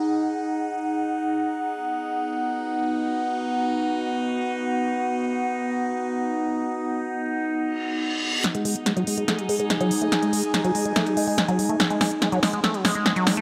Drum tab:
HH |----------------|----------------|----------------|----------------|
SD |----------------|----------------|----------------|----------------|

HH |----------------|xxoxxxoxxxoxxxox|xxoxxxoxxxooxxox|xxo-xxoxxxo-xxox|
SD |----------------|o---o---o---o---|o---o---o---o---|o-o-o-o-o-o-o-o-|